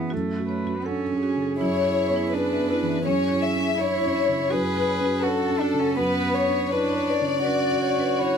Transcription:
0.00 0.14 F#2 soft
0.00 0.14 E3 soft
0.00 0.14 B3 soft
0.00 0.14 C#4 soft
0.00 0.14 E4 soft
0.10 0.87 A3 medium
0.10 0.22 F#4 medium
0.10 0.46 A4 soft
0.14 1.57 F#2 soft
0.39 0.77 F#4 soft
0.49 0.86 B4 soft
0.49 0.60 C#5 soft
0.64 1.02 C#4 soft
0.64 0.78 F#4 medium
0.85 1.60 C#4 medium
0.85 1.12 D4 soft
0.85 1.22 A4 medium
0.85 0.97 F#5 soft
1.05 1.16 A4 soft
1.12 1.51 C#4 soft
1.23 1.34 F#4 medium
1.23 3.02 G#4 soft
1.36 1.60 C#3 soft
1.42 1.53 A4 soft
1.60 3.02 F#2 soft
1.60 2.35 E4 medium
1.60 1.72 E4 medium
1.60 2.29 C#5 medium
1.85 2.24 E4 soft
1.98 2.08 B4 soft
2.10 2.48 B3 soft
2.16 2.27 E4 medium
2.33 2.57 C#4 soft
2.33 3.05 D4 medium
2.33 3.06 B4 soft
2.33 2.44 B4 soft
2.52 2.63 E5 soft
2.58 2.96 B3 soft
2.70 2.81 E4 soft
2.83 3.06 E3 soft
2.89 2.99 E5 soft
3.05 4.48 F#2 soft
3.05 3.77 C#4 medium
3.05 3.17 C#4 medium
3.05 3.80 G#4 soft
3.05 3.42 C#5 medium
3.32 3.70 E4 soft
3.43 3.54 G#4 soft
3.43 3.79 E5 soft
3.56 3.94 C#4 soft
3.61 3.72 C#4 medium
3.78 4.04 D4 soft
3.78 4.53 E4 medium
3.78 4.52 C#5 medium
3.78 3.90 C#5 soft
3.78 4.52 C#5 medium
3.97 4.08 E4 soft
4.05 4.43 C#4 soft
4.16 4.26 C#4 medium
4.29 4.53 C#3 soft
4.33 4.44 E4 soft
4.50 5.94 F#2 medium
4.50 4.62 F#4 medium
4.50 5.25 G#4 medium
4.50 5.25 B4 medium
4.77 5.15 F#4 soft
4.87 4.99 C#5 soft
5.00 5.39 C#4 soft
5.05 5.17 F#4 medium
5.23 5.50 D4 soft
5.23 5.62 F#4 medium
5.23 5.97 A4 soft
5.23 5.98 A4 medium
5.23 5.35 C#5 soft
5.43 5.54 F#5 soft
5.49 5.88 C#4 soft
5.61 5.81 D4 medium
5.61 5.72 F#4 medium
5.74 5.98 C#3 soft
5.79 5.99 C#4 medium
5.79 5.90 F#5 soft
5.97 7.41 F#2 medium
5.97 6.72 B3 medium
5.97 6.08 B4 medium
5.97 6.36 B4 medium
5.97 6.34 B4 medium
6.23 6.61 F#4 soft
6.34 6.71 C#5 medium
6.34 7.46 C#5 medium
6.34 6.45 F#5 soft
6.47 6.86 D4 soft
6.52 6.63 B4 medium
6.71 7.44 D4 medium
6.71 6.96 E4 soft
6.71 7.08 B4 medium
6.71 6.82 B5 soft
6.89 7.00 D5 soft
6.97 7.35 D4 soft
7.07 7.18 B4 medium
7.07 8.19 D5 medium
7.21 7.60 C#3 soft
7.27 7.38 D5 soft
7.44 7.85 D4 soft
7.44 8.38 F#4 medium
7.44 7.56 B4 medium
7.44 7.83 D5 medium
7.72 8.10 F#4 soft
7.81 8.20 C#5 medium
7.81 7.93 F#5 soft
7.96 8.35 D4 soft
7.96 8.11 B4 medium
8.18 8.38 E4 soft
8.18 8.38 B4 soft
8.18 8.38 C#5 medium
8.18 8.29 F#5 soft

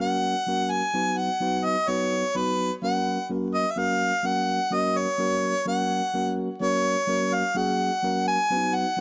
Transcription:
0.00 0.33 F#3 medium
0.00 0.34 A#3 medium
0.00 0.34 C#4 medium
0.00 0.34 F#4 medium
0.00 0.34 A#4 medium
0.00 0.73 F#5 loud
0.47 0.81 F#3 medium
0.47 0.81 A#3 medium
0.47 0.82 C#4 medium
0.47 0.82 F#4 medium
0.47 0.82 A#4 medium
0.72 1.20 G#5 loud
0.93 1.28 F#3 medium
0.93 1.28 B3 medium
0.93 1.28 D#4 medium
0.93 1.29 F#4 medium
0.93 1.29 B4 medium
1.18 1.67 F#5 loud
1.40 1.75 F#3 medium
1.40 1.75 B3 medium
1.40 1.75 D#4 medium
1.40 1.76 F#4 medium
1.40 1.76 B4 medium
1.66 1.91 D#5 loud
1.87 2.22 F#3 medium
1.87 2.22 B3 medium
1.87 2.23 D#4 medium
1.87 2.23 F#4 medium
1.87 2.23 B4 medium
1.87 2.38 C#5 medium
2.35 2.69 F#3 medium
2.35 2.70 B3 medium
2.35 2.70 D#4 medium
2.35 2.70 F#4 medium
2.35 2.72 B4 medium
2.35 2.70 B4 medium
2.82 3.17 F#3 medium
2.82 3.17 A#3 medium
2.82 3.17 C#4 medium
2.82 3.17 F#4 medium
2.82 3.18 A#4 medium
2.82 3.27 F#5 loud
3.29 3.64 F#3 medium
3.29 3.64 A#3 medium
3.29 3.64 C#4 medium
3.29 3.65 F#4 medium
3.29 3.65 A#4 medium
3.54 3.72 D#5 loud
3.71 3.80 E5 medium
3.76 4.11 F#3 medium
3.76 4.11 A#3 medium
3.76 4.11 C#4 medium
3.76 4.12 F#4 medium
3.76 4.12 A#4 medium
3.76 4.28 F5 loud
4.23 4.58 F#3 medium
4.23 4.59 A#3 medium
4.23 4.59 C#4 medium
4.23 4.59 F#4 medium
4.23 4.59 A#4 medium
4.23 4.75 F#5 loud
4.71 5.06 F#3 medium
4.71 5.06 A#3 medium
4.71 5.06 C#4 medium
4.71 5.06 F#4 medium
4.71 5.07 A#4 medium
4.71 4.99 D#5 loud
4.98 5.67 C#5 loud
5.18 5.53 F#3 medium
5.18 5.53 A#3 medium
5.18 5.53 C#4 medium
5.18 5.54 F#4 medium
5.18 5.54 A#4 medium
5.66 6.00 F#3 medium
5.66 6.01 A#3 medium
5.66 6.01 C#4 medium
5.66 6.01 F#4 medium
5.66 6.01 A#4 medium
5.66 6.34 F#5 medium
6.13 6.48 F#3 medium
6.13 6.48 A#3 medium
6.13 6.48 C#4 medium
6.13 6.48 F#4 medium
6.13 6.49 A#4 medium
6.60 6.95 F#3 medium
6.60 6.95 A#3 medium
6.60 6.95 C#4 medium
6.60 6.96 F#4 medium
6.60 6.96 A#4 medium
6.60 7.35 C#5 loud
7.07 7.42 F#3 medium
7.07 7.42 A#3 medium
7.07 7.42 C#4 medium
7.07 7.43 F#4 medium
7.07 7.43 A#4 medium
7.34 7.59 F5 loud
7.55 7.89 F#3 medium
7.55 7.90 A#3 medium
7.55 7.90 C#4 medium
7.55 7.90 F#4 medium
7.55 7.90 G#4 medium
7.55 8.27 F#5 loud
8.02 8.37 F#3 medium
8.02 8.37 A#3 medium
8.02 8.37 C#4 medium
8.02 8.38 F#4 medium
8.02 8.38 A#4 medium
8.28 8.77 G#5 loud
8.50 8.84 F#3 medium
8.50 8.84 B3 medium
8.50 8.56 C#4 medium
8.50 8.85 F#4 medium
8.50 8.85 B4 medium
8.57 8.88 D#4 medium
8.75 9.01 F#5 loud
8.97 9.01 F#3 medium

